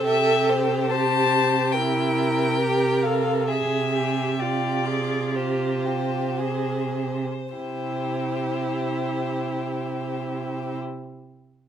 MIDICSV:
0, 0, Header, 1, 5, 480
1, 0, Start_track
1, 0, Key_signature, 0, "major"
1, 0, Tempo, 846262
1, 26, Time_signature, 4, 2, 24, 8
1, 1467, Tempo, 899550
1, 2427, Tempo, 949367
1, 2907, Tempo, 1041667
1, 3387, Tempo, 1160542
1, 3867, Tempo, 1050788
1, 5762, End_track
2, 0, Start_track
2, 0, Title_t, "Violin"
2, 0, Program_c, 0, 40
2, 35, Note_on_c, 0, 76, 81
2, 278, Note_on_c, 0, 72, 68
2, 287, Note_off_c, 0, 76, 0
2, 510, Note_off_c, 0, 72, 0
2, 513, Note_on_c, 0, 81, 92
2, 977, Note_on_c, 0, 79, 68
2, 985, Note_off_c, 0, 81, 0
2, 1702, Note_on_c, 0, 77, 58
2, 1710, Note_off_c, 0, 79, 0
2, 1939, Note_off_c, 0, 77, 0
2, 1948, Note_on_c, 0, 76, 59
2, 2429, Note_on_c, 0, 74, 55
2, 2436, Note_off_c, 0, 76, 0
2, 2913, Note_on_c, 0, 72, 45
2, 2920, Note_off_c, 0, 74, 0
2, 3868, Note_off_c, 0, 72, 0
2, 3871, Note_on_c, 0, 72, 43
2, 5347, Note_off_c, 0, 72, 0
2, 5762, End_track
3, 0, Start_track
3, 0, Title_t, "Viola"
3, 0, Program_c, 1, 41
3, 0, Note_on_c, 1, 69, 65
3, 531, Note_on_c, 1, 67, 50
3, 539, Note_off_c, 1, 69, 0
3, 998, Note_on_c, 1, 64, 54
3, 1006, Note_off_c, 1, 67, 0
3, 1474, Note_off_c, 1, 64, 0
3, 1481, Note_on_c, 1, 67, 53
3, 1715, Note_on_c, 1, 69, 45
3, 1723, Note_off_c, 1, 67, 0
3, 1954, Note_on_c, 1, 68, 49
3, 1962, Note_off_c, 1, 69, 0
3, 2191, Note_on_c, 1, 67, 42
3, 2199, Note_off_c, 1, 68, 0
3, 2438, Note_on_c, 1, 65, 39
3, 2446, Note_off_c, 1, 67, 0
3, 2670, Note_on_c, 1, 68, 43
3, 2678, Note_off_c, 1, 65, 0
3, 2916, Note_on_c, 1, 67, 38
3, 2923, Note_off_c, 1, 68, 0
3, 3152, Note_on_c, 1, 65, 31
3, 3158, Note_off_c, 1, 67, 0
3, 3398, Note_on_c, 1, 68, 30
3, 3404, Note_off_c, 1, 65, 0
3, 3638, Note_off_c, 1, 68, 0
3, 3871, Note_on_c, 1, 64, 34
3, 5348, Note_off_c, 1, 64, 0
3, 5762, End_track
4, 0, Start_track
4, 0, Title_t, "Violin"
4, 0, Program_c, 2, 40
4, 30, Note_on_c, 2, 67, 54
4, 514, Note_on_c, 2, 72, 51
4, 523, Note_off_c, 2, 67, 0
4, 983, Note_on_c, 2, 70, 52
4, 992, Note_off_c, 2, 72, 0
4, 1943, Note_on_c, 2, 68, 40
4, 1951, Note_off_c, 2, 70, 0
4, 2175, Note_off_c, 2, 68, 0
4, 2178, Note_on_c, 2, 68, 40
4, 2420, Note_off_c, 2, 68, 0
4, 2430, Note_on_c, 2, 67, 40
4, 2664, Note_on_c, 2, 65, 36
4, 2672, Note_off_c, 2, 67, 0
4, 2908, Note_off_c, 2, 65, 0
4, 2911, Note_on_c, 2, 65, 38
4, 3146, Note_on_c, 2, 67, 33
4, 3153, Note_off_c, 2, 65, 0
4, 3390, Note_on_c, 2, 68, 28
4, 3396, Note_off_c, 2, 67, 0
4, 3755, Note_off_c, 2, 68, 0
4, 3867, Note_on_c, 2, 67, 33
4, 5344, Note_off_c, 2, 67, 0
4, 5762, End_track
5, 0, Start_track
5, 0, Title_t, "Cello"
5, 0, Program_c, 3, 42
5, 33, Note_on_c, 3, 48, 55
5, 3740, Note_off_c, 3, 48, 0
5, 3874, Note_on_c, 3, 48, 37
5, 5350, Note_off_c, 3, 48, 0
5, 5762, End_track
0, 0, End_of_file